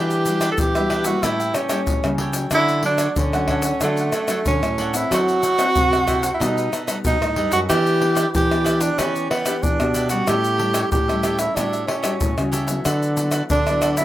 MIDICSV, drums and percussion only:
0, 0, Header, 1, 4, 480
1, 0, Start_track
1, 0, Tempo, 646134
1, 1879, Time_signature, 4, 2, 24, 8
1, 10434, End_track
2, 0, Start_track
2, 0, Title_t, "Pandeiro"
2, 78, Note_on_c, 9, 54, 32
2, 153, Note_off_c, 9, 54, 0
2, 190, Note_on_c, 9, 54, 55
2, 264, Note_off_c, 9, 54, 0
2, 304, Note_on_c, 9, 54, 63
2, 378, Note_off_c, 9, 54, 0
2, 431, Note_on_c, 9, 54, 79
2, 505, Note_off_c, 9, 54, 0
2, 559, Note_on_c, 9, 54, 33
2, 633, Note_off_c, 9, 54, 0
2, 669, Note_on_c, 9, 54, 57
2, 744, Note_off_c, 9, 54, 0
2, 775, Note_on_c, 9, 54, 66
2, 850, Note_off_c, 9, 54, 0
2, 914, Note_on_c, 9, 54, 82
2, 988, Note_off_c, 9, 54, 0
2, 1040, Note_on_c, 9, 54, 30
2, 1114, Note_off_c, 9, 54, 0
2, 1148, Note_on_c, 9, 54, 54
2, 1222, Note_off_c, 9, 54, 0
2, 1259, Note_on_c, 9, 54, 61
2, 1333, Note_off_c, 9, 54, 0
2, 1389, Note_on_c, 9, 54, 74
2, 1463, Note_off_c, 9, 54, 0
2, 1514, Note_on_c, 9, 54, 33
2, 1588, Note_off_c, 9, 54, 0
2, 1621, Note_on_c, 9, 54, 60
2, 1695, Note_off_c, 9, 54, 0
2, 1733, Note_on_c, 9, 54, 66
2, 1808, Note_off_c, 9, 54, 0
2, 1863, Note_on_c, 9, 54, 79
2, 1938, Note_off_c, 9, 54, 0
2, 1994, Note_on_c, 9, 54, 32
2, 2068, Note_off_c, 9, 54, 0
2, 2100, Note_on_c, 9, 54, 54
2, 2174, Note_off_c, 9, 54, 0
2, 2214, Note_on_c, 9, 54, 63
2, 2289, Note_off_c, 9, 54, 0
2, 2350, Note_on_c, 9, 54, 78
2, 2424, Note_off_c, 9, 54, 0
2, 2476, Note_on_c, 9, 54, 32
2, 2550, Note_off_c, 9, 54, 0
2, 2582, Note_on_c, 9, 54, 58
2, 2656, Note_off_c, 9, 54, 0
2, 2691, Note_on_c, 9, 54, 69
2, 2765, Note_off_c, 9, 54, 0
2, 2828, Note_on_c, 9, 54, 75
2, 2902, Note_off_c, 9, 54, 0
2, 2950, Note_on_c, 9, 54, 32
2, 3025, Note_off_c, 9, 54, 0
2, 3064, Note_on_c, 9, 54, 52
2, 3138, Note_off_c, 9, 54, 0
2, 3179, Note_on_c, 9, 54, 65
2, 3254, Note_off_c, 9, 54, 0
2, 3311, Note_on_c, 9, 54, 77
2, 3385, Note_off_c, 9, 54, 0
2, 3438, Note_on_c, 9, 54, 34
2, 3513, Note_off_c, 9, 54, 0
2, 3552, Note_on_c, 9, 54, 56
2, 3626, Note_off_c, 9, 54, 0
2, 3669, Note_on_c, 9, 54, 66
2, 3743, Note_off_c, 9, 54, 0
2, 3802, Note_on_c, 9, 54, 81
2, 3877, Note_off_c, 9, 54, 0
2, 3926, Note_on_c, 9, 54, 30
2, 4000, Note_off_c, 9, 54, 0
2, 4034, Note_on_c, 9, 54, 56
2, 4108, Note_off_c, 9, 54, 0
2, 4151, Note_on_c, 9, 54, 65
2, 4225, Note_off_c, 9, 54, 0
2, 4276, Note_on_c, 9, 54, 77
2, 4351, Note_off_c, 9, 54, 0
2, 4405, Note_on_c, 9, 54, 31
2, 4479, Note_off_c, 9, 54, 0
2, 4513, Note_on_c, 9, 54, 51
2, 4588, Note_off_c, 9, 54, 0
2, 4629, Note_on_c, 9, 54, 65
2, 4703, Note_off_c, 9, 54, 0
2, 4765, Note_on_c, 9, 54, 79
2, 4839, Note_off_c, 9, 54, 0
2, 4885, Note_on_c, 9, 54, 32
2, 4959, Note_off_c, 9, 54, 0
2, 4999, Note_on_c, 9, 54, 53
2, 5073, Note_off_c, 9, 54, 0
2, 5111, Note_on_c, 9, 54, 63
2, 5185, Note_off_c, 9, 54, 0
2, 5236, Note_on_c, 9, 54, 78
2, 5310, Note_off_c, 9, 54, 0
2, 5363, Note_on_c, 9, 54, 36
2, 5437, Note_off_c, 9, 54, 0
2, 5470, Note_on_c, 9, 54, 57
2, 5544, Note_off_c, 9, 54, 0
2, 5585, Note_on_c, 9, 54, 65
2, 5659, Note_off_c, 9, 54, 0
2, 5718, Note_on_c, 9, 54, 74
2, 5792, Note_off_c, 9, 54, 0
2, 5843, Note_on_c, 9, 54, 30
2, 5917, Note_off_c, 9, 54, 0
2, 5955, Note_on_c, 9, 54, 55
2, 6029, Note_off_c, 9, 54, 0
2, 6066, Note_on_c, 9, 54, 61
2, 6140, Note_off_c, 9, 54, 0
2, 6201, Note_on_c, 9, 54, 76
2, 6275, Note_off_c, 9, 54, 0
2, 6325, Note_on_c, 9, 54, 32
2, 6399, Note_off_c, 9, 54, 0
2, 6433, Note_on_c, 9, 54, 54
2, 6507, Note_off_c, 9, 54, 0
2, 6542, Note_on_c, 9, 54, 66
2, 6617, Note_off_c, 9, 54, 0
2, 6676, Note_on_c, 9, 54, 79
2, 6750, Note_off_c, 9, 54, 0
2, 6802, Note_on_c, 9, 54, 31
2, 6876, Note_off_c, 9, 54, 0
2, 6916, Note_on_c, 9, 54, 58
2, 6990, Note_off_c, 9, 54, 0
2, 7025, Note_on_c, 9, 54, 68
2, 7099, Note_off_c, 9, 54, 0
2, 7156, Note_on_c, 9, 54, 75
2, 7230, Note_off_c, 9, 54, 0
2, 7279, Note_on_c, 9, 54, 34
2, 7353, Note_off_c, 9, 54, 0
2, 7387, Note_on_c, 9, 54, 57
2, 7461, Note_off_c, 9, 54, 0
2, 7498, Note_on_c, 9, 54, 64
2, 7573, Note_off_c, 9, 54, 0
2, 7632, Note_on_c, 9, 54, 76
2, 7706, Note_off_c, 9, 54, 0
2, 7757, Note_on_c, 9, 54, 33
2, 7832, Note_off_c, 9, 54, 0
2, 7870, Note_on_c, 9, 54, 58
2, 7945, Note_off_c, 9, 54, 0
2, 7980, Note_on_c, 9, 54, 65
2, 8054, Note_off_c, 9, 54, 0
2, 8112, Note_on_c, 9, 54, 75
2, 8186, Note_off_c, 9, 54, 0
2, 8241, Note_on_c, 9, 54, 34
2, 8315, Note_off_c, 9, 54, 0
2, 8345, Note_on_c, 9, 54, 58
2, 8420, Note_off_c, 9, 54, 0
2, 8459, Note_on_c, 9, 54, 70
2, 8533, Note_off_c, 9, 54, 0
2, 8595, Note_on_c, 9, 54, 78
2, 8669, Note_off_c, 9, 54, 0
2, 8715, Note_on_c, 9, 54, 32
2, 8790, Note_off_c, 9, 54, 0
2, 8829, Note_on_c, 9, 54, 61
2, 8903, Note_off_c, 9, 54, 0
2, 8942, Note_on_c, 9, 54, 67
2, 9016, Note_off_c, 9, 54, 0
2, 9069, Note_on_c, 9, 54, 78
2, 9143, Note_off_c, 9, 54, 0
2, 9195, Note_on_c, 9, 54, 34
2, 9269, Note_off_c, 9, 54, 0
2, 9307, Note_on_c, 9, 54, 59
2, 9381, Note_off_c, 9, 54, 0
2, 9418, Note_on_c, 9, 54, 64
2, 9492, Note_off_c, 9, 54, 0
2, 9547, Note_on_c, 9, 54, 78
2, 9621, Note_off_c, 9, 54, 0
2, 9677, Note_on_c, 9, 54, 33
2, 9751, Note_off_c, 9, 54, 0
2, 9784, Note_on_c, 9, 54, 58
2, 9858, Note_off_c, 9, 54, 0
2, 9891, Note_on_c, 9, 54, 61
2, 9965, Note_off_c, 9, 54, 0
2, 10029, Note_on_c, 9, 54, 82
2, 10103, Note_off_c, 9, 54, 0
2, 10152, Note_on_c, 9, 54, 30
2, 10227, Note_off_c, 9, 54, 0
2, 10264, Note_on_c, 9, 54, 52
2, 10339, Note_off_c, 9, 54, 0
2, 10379, Note_on_c, 9, 54, 66
2, 10434, Note_off_c, 9, 54, 0
2, 10434, End_track
3, 0, Start_track
3, 0, Title_t, "Tamborim"
3, 304, Note_on_c, 9, 60, 74
3, 378, Note_off_c, 9, 60, 0
3, 559, Note_on_c, 9, 60, 76
3, 633, Note_off_c, 9, 60, 0
3, 669, Note_on_c, 9, 60, 79
3, 744, Note_off_c, 9, 60, 0
3, 914, Note_on_c, 9, 60, 75
3, 988, Note_off_c, 9, 60, 0
3, 1148, Note_on_c, 9, 60, 82
3, 1222, Note_off_c, 9, 60, 0
3, 1259, Note_on_c, 9, 60, 78
3, 1333, Note_off_c, 9, 60, 0
3, 1514, Note_on_c, 9, 60, 85
3, 1588, Note_off_c, 9, 60, 0
3, 1863, Note_on_c, 9, 60, 79
3, 1938, Note_off_c, 9, 60, 0
3, 2214, Note_on_c, 9, 60, 73
3, 2289, Note_off_c, 9, 60, 0
3, 2476, Note_on_c, 9, 60, 79
3, 2550, Note_off_c, 9, 60, 0
3, 2582, Note_on_c, 9, 60, 82
3, 2656, Note_off_c, 9, 60, 0
3, 2828, Note_on_c, 9, 60, 75
3, 2902, Note_off_c, 9, 60, 0
3, 3064, Note_on_c, 9, 60, 77
3, 3138, Note_off_c, 9, 60, 0
3, 3179, Note_on_c, 9, 60, 75
3, 3254, Note_off_c, 9, 60, 0
3, 3438, Note_on_c, 9, 60, 81
3, 3513, Note_off_c, 9, 60, 0
3, 3802, Note_on_c, 9, 60, 79
3, 3877, Note_off_c, 9, 60, 0
3, 4151, Note_on_c, 9, 60, 76
3, 4225, Note_off_c, 9, 60, 0
3, 4405, Note_on_c, 9, 60, 73
3, 4479, Note_off_c, 9, 60, 0
3, 4513, Note_on_c, 9, 60, 76
3, 4588, Note_off_c, 9, 60, 0
3, 4765, Note_on_c, 9, 60, 71
3, 4839, Note_off_c, 9, 60, 0
3, 4999, Note_on_c, 9, 60, 74
3, 5073, Note_off_c, 9, 60, 0
3, 5111, Note_on_c, 9, 60, 77
3, 5185, Note_off_c, 9, 60, 0
3, 5363, Note_on_c, 9, 60, 86
3, 5437, Note_off_c, 9, 60, 0
3, 5718, Note_on_c, 9, 60, 81
3, 5792, Note_off_c, 9, 60, 0
3, 6066, Note_on_c, 9, 60, 73
3, 6140, Note_off_c, 9, 60, 0
3, 6325, Note_on_c, 9, 60, 75
3, 6399, Note_off_c, 9, 60, 0
3, 6433, Note_on_c, 9, 60, 82
3, 6507, Note_off_c, 9, 60, 0
3, 6676, Note_on_c, 9, 60, 77
3, 6750, Note_off_c, 9, 60, 0
3, 6916, Note_on_c, 9, 60, 77
3, 6990, Note_off_c, 9, 60, 0
3, 7025, Note_on_c, 9, 60, 74
3, 7099, Note_off_c, 9, 60, 0
3, 7279, Note_on_c, 9, 60, 86
3, 7353, Note_off_c, 9, 60, 0
3, 7632, Note_on_c, 9, 60, 80
3, 7706, Note_off_c, 9, 60, 0
3, 7980, Note_on_c, 9, 60, 74
3, 8054, Note_off_c, 9, 60, 0
3, 8241, Note_on_c, 9, 60, 74
3, 8315, Note_off_c, 9, 60, 0
3, 8345, Note_on_c, 9, 60, 73
3, 8420, Note_off_c, 9, 60, 0
3, 8595, Note_on_c, 9, 60, 77
3, 8669, Note_off_c, 9, 60, 0
3, 8829, Note_on_c, 9, 60, 79
3, 8903, Note_off_c, 9, 60, 0
3, 8942, Note_on_c, 9, 60, 79
3, 9016, Note_off_c, 9, 60, 0
3, 9195, Note_on_c, 9, 60, 80
3, 9269, Note_off_c, 9, 60, 0
3, 9547, Note_on_c, 9, 60, 78
3, 9621, Note_off_c, 9, 60, 0
3, 9891, Note_on_c, 9, 60, 76
3, 9965, Note_off_c, 9, 60, 0
3, 10152, Note_on_c, 9, 60, 80
3, 10227, Note_off_c, 9, 60, 0
3, 10264, Note_on_c, 9, 60, 81
3, 10339, Note_off_c, 9, 60, 0
3, 10434, End_track
4, 0, Start_track
4, 0, Title_t, "Drums"
4, 78, Note_on_c, 9, 82, 33
4, 153, Note_off_c, 9, 82, 0
4, 190, Note_on_c, 9, 82, 69
4, 264, Note_off_c, 9, 82, 0
4, 304, Note_on_c, 9, 82, 73
4, 378, Note_off_c, 9, 82, 0
4, 431, Note_on_c, 9, 82, 81
4, 431, Note_on_c, 9, 87, 95
4, 505, Note_off_c, 9, 82, 0
4, 505, Note_off_c, 9, 87, 0
4, 559, Note_on_c, 9, 82, 32
4, 633, Note_off_c, 9, 82, 0
4, 775, Note_on_c, 9, 82, 80
4, 850, Note_off_c, 9, 82, 0
4, 914, Note_on_c, 9, 82, 73
4, 914, Note_on_c, 9, 87, 56
4, 988, Note_off_c, 9, 82, 0
4, 988, Note_off_c, 9, 87, 0
4, 1040, Note_on_c, 9, 82, 32
4, 1114, Note_off_c, 9, 82, 0
4, 1148, Note_on_c, 9, 82, 66
4, 1222, Note_off_c, 9, 82, 0
4, 1259, Note_on_c, 9, 82, 77
4, 1333, Note_off_c, 9, 82, 0
4, 1389, Note_on_c, 9, 82, 72
4, 1389, Note_on_c, 9, 87, 96
4, 1463, Note_off_c, 9, 82, 0
4, 1463, Note_off_c, 9, 87, 0
4, 1514, Note_on_c, 9, 82, 34
4, 1588, Note_off_c, 9, 82, 0
4, 1733, Note_on_c, 9, 82, 78
4, 1808, Note_off_c, 9, 82, 0
4, 1863, Note_on_c, 9, 82, 78
4, 1863, Note_on_c, 9, 87, 57
4, 1938, Note_off_c, 9, 82, 0
4, 1938, Note_off_c, 9, 87, 0
4, 1994, Note_on_c, 9, 82, 32
4, 2068, Note_off_c, 9, 82, 0
4, 2214, Note_on_c, 9, 82, 73
4, 2289, Note_off_c, 9, 82, 0
4, 2350, Note_on_c, 9, 82, 79
4, 2350, Note_on_c, 9, 87, 100
4, 2424, Note_off_c, 9, 82, 0
4, 2424, Note_off_c, 9, 87, 0
4, 2476, Note_on_c, 9, 82, 32
4, 2550, Note_off_c, 9, 82, 0
4, 2582, Note_on_c, 9, 87, 67
4, 2656, Note_off_c, 9, 87, 0
4, 2691, Note_on_c, 9, 82, 76
4, 2765, Note_off_c, 9, 82, 0
4, 2828, Note_on_c, 9, 82, 74
4, 2828, Note_on_c, 9, 87, 55
4, 2902, Note_off_c, 9, 82, 0
4, 2902, Note_off_c, 9, 87, 0
4, 2950, Note_on_c, 9, 82, 33
4, 3025, Note_off_c, 9, 82, 0
4, 3064, Note_on_c, 9, 82, 66
4, 3138, Note_off_c, 9, 82, 0
4, 3179, Note_on_c, 9, 82, 76
4, 3254, Note_off_c, 9, 82, 0
4, 3311, Note_on_c, 9, 82, 73
4, 3311, Note_on_c, 9, 87, 92
4, 3385, Note_off_c, 9, 82, 0
4, 3385, Note_off_c, 9, 87, 0
4, 3438, Note_on_c, 9, 82, 35
4, 3513, Note_off_c, 9, 82, 0
4, 3669, Note_on_c, 9, 82, 78
4, 3743, Note_off_c, 9, 82, 0
4, 3802, Note_on_c, 9, 82, 81
4, 3802, Note_on_c, 9, 87, 54
4, 3877, Note_off_c, 9, 82, 0
4, 3877, Note_off_c, 9, 87, 0
4, 3926, Note_on_c, 9, 82, 29
4, 4000, Note_off_c, 9, 82, 0
4, 4034, Note_on_c, 9, 82, 71
4, 4108, Note_off_c, 9, 82, 0
4, 4151, Note_on_c, 9, 82, 76
4, 4225, Note_off_c, 9, 82, 0
4, 4276, Note_on_c, 9, 82, 79
4, 4276, Note_on_c, 9, 87, 98
4, 4351, Note_off_c, 9, 82, 0
4, 4351, Note_off_c, 9, 87, 0
4, 4405, Note_on_c, 9, 82, 30
4, 4479, Note_off_c, 9, 82, 0
4, 4513, Note_on_c, 9, 82, 63
4, 4513, Note_on_c, 9, 87, 61
4, 4588, Note_off_c, 9, 82, 0
4, 4588, Note_off_c, 9, 87, 0
4, 4629, Note_on_c, 9, 82, 73
4, 4703, Note_off_c, 9, 82, 0
4, 4765, Note_on_c, 9, 82, 79
4, 4765, Note_on_c, 9, 87, 54
4, 4839, Note_off_c, 9, 82, 0
4, 4839, Note_off_c, 9, 87, 0
4, 4885, Note_on_c, 9, 82, 31
4, 4959, Note_off_c, 9, 82, 0
4, 4999, Note_on_c, 9, 82, 65
4, 5073, Note_off_c, 9, 82, 0
4, 5111, Note_on_c, 9, 82, 74
4, 5185, Note_off_c, 9, 82, 0
4, 5236, Note_on_c, 9, 82, 77
4, 5236, Note_on_c, 9, 87, 98
4, 5310, Note_off_c, 9, 82, 0
4, 5310, Note_off_c, 9, 87, 0
4, 5363, Note_on_c, 9, 82, 33
4, 5437, Note_off_c, 9, 82, 0
4, 5585, Note_on_c, 9, 82, 78
4, 5659, Note_off_c, 9, 82, 0
4, 5718, Note_on_c, 9, 82, 83
4, 5718, Note_on_c, 9, 87, 56
4, 5792, Note_off_c, 9, 82, 0
4, 5792, Note_off_c, 9, 87, 0
4, 5843, Note_on_c, 9, 82, 32
4, 5917, Note_off_c, 9, 82, 0
4, 6066, Note_on_c, 9, 82, 74
4, 6140, Note_off_c, 9, 82, 0
4, 6201, Note_on_c, 9, 82, 73
4, 6201, Note_on_c, 9, 87, 98
4, 6275, Note_off_c, 9, 82, 0
4, 6275, Note_off_c, 9, 87, 0
4, 6325, Note_on_c, 9, 82, 30
4, 6399, Note_off_c, 9, 82, 0
4, 6433, Note_on_c, 9, 82, 64
4, 6507, Note_off_c, 9, 82, 0
4, 6542, Note_on_c, 9, 82, 76
4, 6617, Note_off_c, 9, 82, 0
4, 6676, Note_on_c, 9, 82, 77
4, 6676, Note_on_c, 9, 87, 56
4, 6750, Note_off_c, 9, 82, 0
4, 6750, Note_off_c, 9, 87, 0
4, 6802, Note_on_c, 9, 82, 31
4, 6876, Note_off_c, 9, 82, 0
4, 7025, Note_on_c, 9, 82, 79
4, 7099, Note_off_c, 9, 82, 0
4, 7156, Note_on_c, 9, 82, 75
4, 7156, Note_on_c, 9, 87, 103
4, 7230, Note_off_c, 9, 82, 0
4, 7230, Note_off_c, 9, 87, 0
4, 7279, Note_on_c, 9, 82, 34
4, 7353, Note_off_c, 9, 82, 0
4, 7387, Note_on_c, 9, 82, 71
4, 7461, Note_off_c, 9, 82, 0
4, 7498, Note_on_c, 9, 82, 80
4, 7573, Note_off_c, 9, 82, 0
4, 7632, Note_on_c, 9, 82, 80
4, 7632, Note_on_c, 9, 87, 58
4, 7706, Note_off_c, 9, 82, 0
4, 7706, Note_off_c, 9, 87, 0
4, 7757, Note_on_c, 9, 82, 33
4, 7832, Note_off_c, 9, 82, 0
4, 7980, Note_on_c, 9, 82, 79
4, 8054, Note_off_c, 9, 82, 0
4, 8112, Note_on_c, 9, 82, 72
4, 8112, Note_on_c, 9, 87, 99
4, 8186, Note_off_c, 9, 82, 0
4, 8186, Note_off_c, 9, 87, 0
4, 8241, Note_on_c, 9, 82, 33
4, 8315, Note_off_c, 9, 82, 0
4, 8345, Note_on_c, 9, 82, 65
4, 8420, Note_off_c, 9, 82, 0
4, 8459, Note_on_c, 9, 82, 82
4, 8533, Note_off_c, 9, 82, 0
4, 8595, Note_on_c, 9, 82, 77
4, 8595, Note_on_c, 9, 87, 54
4, 8669, Note_off_c, 9, 82, 0
4, 8669, Note_off_c, 9, 87, 0
4, 8715, Note_on_c, 9, 82, 34
4, 8790, Note_off_c, 9, 82, 0
4, 8942, Note_on_c, 9, 82, 84
4, 9016, Note_off_c, 9, 82, 0
4, 9069, Note_on_c, 9, 82, 78
4, 9069, Note_on_c, 9, 87, 98
4, 9143, Note_off_c, 9, 82, 0
4, 9143, Note_off_c, 9, 87, 0
4, 9195, Note_on_c, 9, 82, 33
4, 9269, Note_off_c, 9, 82, 0
4, 9307, Note_on_c, 9, 82, 72
4, 9381, Note_off_c, 9, 82, 0
4, 9418, Note_on_c, 9, 82, 78
4, 9492, Note_off_c, 9, 82, 0
4, 9547, Note_on_c, 9, 82, 81
4, 9547, Note_on_c, 9, 87, 57
4, 9621, Note_off_c, 9, 82, 0
4, 9621, Note_off_c, 9, 87, 0
4, 9677, Note_on_c, 9, 82, 30
4, 9751, Note_off_c, 9, 82, 0
4, 9784, Note_on_c, 9, 82, 73
4, 9858, Note_off_c, 9, 82, 0
4, 9891, Note_on_c, 9, 82, 75
4, 9965, Note_off_c, 9, 82, 0
4, 10029, Note_on_c, 9, 82, 76
4, 10029, Note_on_c, 9, 87, 96
4, 10103, Note_off_c, 9, 82, 0
4, 10103, Note_off_c, 9, 87, 0
4, 10152, Note_on_c, 9, 82, 30
4, 10227, Note_off_c, 9, 82, 0
4, 10264, Note_on_c, 9, 82, 65
4, 10339, Note_off_c, 9, 82, 0
4, 10379, Note_on_c, 9, 82, 82
4, 10434, Note_off_c, 9, 82, 0
4, 10434, End_track
0, 0, End_of_file